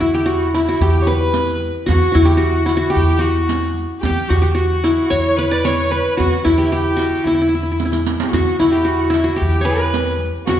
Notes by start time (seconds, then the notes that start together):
Already playing: F#4
0.00 E2 E4
0.14 G4, riq
0.26 F#4, riq
0.54 E4, riq
0.69 F#4
0.80 E2 G4
0.94 riq
1.01 C#5
1.07 B4, riq
1.34 riq
1.47 riq
1.86 E2 F#4, riq
2.12 E2 E4 F#4, riq
2.25 G4, riq
2.37 F#4, riq
2.66 E4, riq
2.77 F#4
2.82 F#4
2.90 G4
2.96 E2
3.09 riq
3.19 F#4, riq
3.49 riq
3.64 riq
4.00 E2 G4, riq
4.05 G4
4.28 E2 F#4, riq
4.42 G4, riq
4.55 F#4, riq
4.84 E4, riq
5.10 E2 C#5
5.25 riq
5.37 B4, riq
5.51 D5
5.65 C#5, riq
5.78 riq
5.91 B4
6.17 E2 F#4, riq
6.33 riq
6.45 E2 E4, riq
6.58 G4, riq
6.72 G4, riq
6.97 F#4, riq
7.24 E2 E4
7.35 E4
7.40 E4, riq
7.49 E4
7.53 E4, riq
7.63 E4
7.72 E4
7.79 E4, riq
7.85 E4
7.92 E4, riq
8.07 riq
8.20 G4, riq
8.29 E2 F#4
8.33 F#4, riq
8.59 E2 E4, riq
8.71 G4, riq
8.85 F#4, riq
9.10 E4, riq
9.24 F#4
9.36 G4
9.41 E2
9.53 riq
9.61 B4 C#5
9.67 riq
9.94 riq
10.08 riq
10.46 E2 F#4, riq